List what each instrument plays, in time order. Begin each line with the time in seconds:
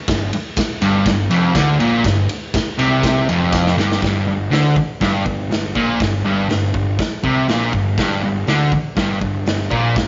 0.08 picked electric bass G1, distorted electric guitar G2, kick, snare, ride
0.33 muted picked electric bass stroke, muted distorted electric guitar stroke, ride
0.57 muted picked electric bass stroke, muted distorted electric guitar stroke, kick, snare, ride, tambourine
0.81 picked electric bass G1, distorted electric guitar G2, ride, tambourine
1.06 picked electric bass G1, distorted electric guitar G2, kick, snare, ride, tambourine
1.30 picked electric bass F1, distorted electric guitar F2, ride, tambourine
1.55 picked electric bass D2, distorted electric guitar D3, kick, snare, ride, tambourine
1.80 picked electric bass A#1, distorted electric guitar A#2, ride, tambourine
2.04 picked electric bass G1, distorted electric guitar G2, kick, snare, ride
2.29 ride, tambourine
2.54 muted picked electric bass stroke, muted distorted electric guitar stroke, kick, snare, ride, tambourine
2.79 picked electric bass C2, distorted electric guitar C3, ride, tambourine
3.03 kick, snare, ride, tambourine
3.27 picked electric bass F1, distorted electric guitar F2, ride, tambourine
3.53 kick, snare, tambourine
3.67 snare
3.77 picked electric bass G1, distorted electric guitar G2, snare, tambourine
3.92 snare
4.02 picked electric bass G1, distorted electric guitar G2, kick, snare, open hi-hat
4.26 picked electric bass G1, distorted electric guitar G2
4.51 picked electric bass D2, distorted electric guitar D3, snare, open hi-hat
4.76 muted picked electric bass stroke, muted distorted electric guitar stroke, kick
5.01 picked electric bass G1, distorted electric guitar G2, kick, snare, open hi-hat
5.26 picked electric bass G1, distorted electric guitar G2, kick
5.51 picked electric bass G1, distorted electric guitar G2, snare, open hi-hat
5.75 picked electric bass A#1, distorted electric guitar A#2, kick
6.00 picked electric bass G1, distorted electric guitar G2, kick, snare, open hi-hat
6.25 picked electric bass G1, distorted electric guitar G2
6.49 picked electric bass G1, distorted electric guitar G2, snare, open hi-hat
6.74 picked electric bass G1, distorted electric guitar G2, kick
6.99 muted distorted electric guitar stroke, muted picked electric bass stroke, kick, snare, open hi-hat
7.24 picked electric bass C2, distorted electric guitar C3, kick
7.48 picked electric bass A#1, distorted electric guitar A#2, snare, open hi-hat
7.73 picked electric bass G1, distorted electric guitar G2, kick
7.98 picked electric bass G1, distorted electric guitar G2, kick, snare, open hi-hat
8.23 picked electric bass G1, distorted electric guitar G2
8.47 picked electric bass D2, distorted electric guitar D3, snare, open hi-hat
8.72 muted picked electric bass stroke, muted distorted electric guitar stroke, kick
8.96 picked electric bass G1, distorted electric guitar G2, kick, snare, open hi-hat
9.21 picked electric bass G1, distorted electric guitar G2, kick
9.46 picked electric bass G1, distorted electric guitar G2, snare, open hi-hat
9.71 picked electric bass A#1, distorted electric guitar A#2, kick
9.96 picked electric bass G1, distorted electric guitar G2, kick, snare, open hi-hat